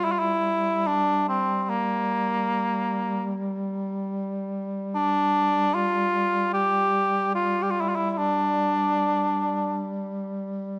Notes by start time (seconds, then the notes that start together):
Already playing: G3
0.05 E4
0.12 F4
0.19 E4
0.87 D4
1.29 C4
1.63 C4
1.69 A#3
4.95 D4
5.75 F4
6.53 G4
7.35 F4
7.63 G4
7.71 F4
7.81 E4
7.89 F4
7.96 E4
8.11 E4
8.18 D4